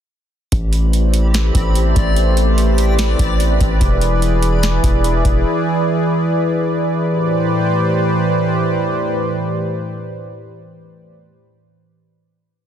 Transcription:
0.52 808-style bass A1, analog synth pad A3 E4 G4 B4 C5 D5, synth texture C4 G4 D5 B5, kick, closed hi-hat
0.73 closed hi-hat
0.93 closed hi-hat
1.14 closed hi-hat
1.34 snare, closed hi-hat
1.55 808-style bass A1, kick, closed hi-hat
1.76 closed hi-hat
1.96 808-style bass A1, kick, closed hi-hat
2.16 closed hi-hat
2.37 closed hi-hat
2.58 closed hi-hat
2.78 closed hi-hat
2.99 snare, closed hi-hat
3.19 808-style bass A1, kick, closed hi-hat
3.40 closed hi-hat
3.61 808-style bass A1, kick, closed hi-hat
3.81 808-style bass E1, analog synth pad E3 E4 G#4, kick, closed hi-hat
4.01 closed hi-hat
4.22 closed hi-hat
4.43 closed hi-hat
4.63 snare, closed hi-hat
4.84 808-style bass E1, kick, closed hi-hat
5.04 closed hi-hat
5.25 808-style bass E1, kick, closed hi-hat
7.10 analog synth pad A2 E3 G4 B4 C5 D5

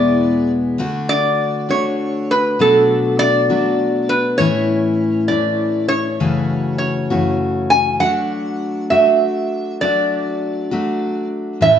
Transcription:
Already playing: steel-string acoustic guitar E2 B2 E3 G#3 B3 E4, resonator guitar played with a steel bar D5
0.78 steel-string acoustic guitar D3 A3 D4 F#4
1.09 resonator guitar played with a steel bar D5
1.69 steel-string acoustic guitar D3 A3 D4 F#4, resonator guitar played with a steel bar C#5
2.31 resonator guitar played with a steel bar B4
2.59 steel-string acoustic guitar B2 F#3 A3 D4 F#4, resonator guitar played with a steel bar A4
3.19 resonator guitar played with a steel bar D5
3.50 steel-string acoustic guitar B2 F#3 A3 D4 F#4
4.09 resonator guitar played with a steel bar B4
4.38 steel-string acoustic guitar A2 E3 A3 C#4 E4, resonator guitar played with a steel bar C#5
5.28 steel-string acoustic guitar A2 E3 A3 E4, resonator guitar played with a steel bar D5
5.88 resonator guitar played with a steel bar C#5
6.20 steel-string acoustic guitar F#2 C#3 E3 A3 C#4 F#4
6.78 resonator guitar played with a steel bar C#5
7.10 steel-string acoustic guitar F#2 C#3 E3 A3 C#4 F#4
7.70 resonator guitar played with a steel bar G#5
8.00 steel-string acoustic guitar F#3 A3 D4 F#4, resonator guitar played with a steel bar F#5
8.90 steel-string acoustic guitar F#3 A3 D4 F#4, resonator guitar played with a steel bar E5
9.81 steel-string acoustic guitar F#3 A3 D4 F#4, resonator guitar played with a steel bar D5
10.71 steel-string acoustic guitar F#3 A3 D4 F#4
11.61 steel-string acoustic guitar A2 E3 A3 C#4 E4, resonator guitar played with a steel bar E5

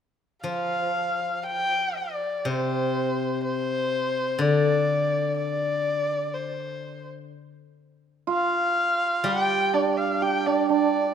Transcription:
0.44 guzheng F3, erhu F5
1.46 erhu G5
1.97 erhu D5
2.45 guzheng C3, erhu C5
3.44 erhu C5
4.39 guzheng D3, erhu D5
5.37 erhu D5
6.33 erhu C5
8.27 hammered dulcimer F4
8.31 erhu F5
9.24 guzheng G3, hammered dulcimer G4, erhu G5
9.74 hammered dulcimer D4, erhu D5
9.97 erhu F5
10.22 hammered dulcimer G4, erhu G5
10.46 hammered dulcimer D4, erhu D5
10.70 hammered dulcimer D4, erhu D5

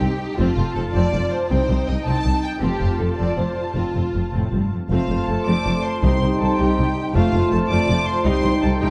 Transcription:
Already playing: viola section D#4, violin section G4 G5
0.02 double bass section C2, cello section C2, viola section C4
0.37 double bass section F1, cello section F2, viola section C4 F4, violin section F4 A5
0.57 double bass section F1, cello section F2, viola section C4
0.75 double bass section F1, cello section F2, viola section C4, violin section A4
0.94 double bass section F1, cello section F2, viola section C4, violin section D5
1.13 double bass section F1, cello section F2, viola section C4
1.31 violin section C5
1.49 cello section C2, double bass section C2, viola section C4 D#4, violin section C5 G5
1.68 double bass section C2, cello section C2, viola section C4
1.86 double bass section C2, cello section C2, viola section C4, violin section D#5
2.05 cello section C2, double bass section C2, viola section C4, violin section A5
2.24 double bass section C2, cello section C2, viola section C4
2.43 violin section G5
2.61 double bass section F1, cello section F2, viola section C4 F4, violin section G4 A5
2.81 double bass section F1, cello section F2, viola section C4
2.99 double bass section F1, cello section F2, viola section C4, violin section A4
3.17 double bass section F1, cello section F2, viola section C4, violin section D5
3.38 double bass section F1, cello section F2, viola section C4, violin section C5
3.76 double bass section F1, cello section F2, viola section C4, violin section F4
3.94 double bass section F1, cello section F2, viola section C4
4.14 double bass section F1, cello section F2, viola section C4
4.33 double bass section F1, cello section A2, viola section C4
4.52 double bass section F1, cello section G2, viola section C4
4.72 cello section F2
4.90 double bass section F1, cello section F2, french horn section A3 F4, viola section A3 C4, violin section F4 F5, clarinet F4, trumpet section C5, cor anglais C5, flute A5
5.09 double bass section F1, cello section F2, viola section A3 C4
5.28 double bass section F1, cello section F2, viola section A3 C4, violin section A4 A5
5.46 double bass section F1, cello section F2, viola section A3 C4, violin section D5 D6
5.64 double bass section F1, cello section F2, viola section A3 C4
5.83 violin section C5 C6
6.02 double bass section C2, cello section C2, timpani C3, viola section G3 D#4, french horn section G3 D#4, clarinet D#4, violin section C5 C6, flute G5
6.22 double bass section C2, cello section C2, viola section G3 D#4
6.40 cello section C2, double bass section C2, viola section G3 D#4, violin section A4 A5
6.58 cello section C2, double bass section C2, viola section G3 D#4, violin section G4 G5
6.78 double bass section C2, cello section C2, viola section G3 D#4
7.14 double bass section F1, cello section F2, french horn section A3 F4, viola section A3 F4, violin section F4 F5, clarinet F4, trumpet section C5, cor anglais C5, flute A5
7.33 double bass section F1, cello section F2, viola section A3 F4
7.52 double bass section F1, cello section F2, viola section A3 F4, violin section A4 A5
7.70 double bass section F1, cello section F2, viola section A3 F4, violin section D5 D6
7.89 double bass section F1, cello section F2, viola section A3 F4
8.08 violin section C5 C6
8.24 double bass section C2, cello section C2, viola section G3 D#4, french horn section G3 D#4, clarinet D#4, violin section C5 C6, flute G5
8.43 double bass section C2, cello section C2, viola section G3 D#4
8.62 double bass section C2, cello section C2, viola section G3 D#4, violin section A4 A5
8.80 double bass section C2, cello section C2, viola section G3 D#4, violin section G4 G5

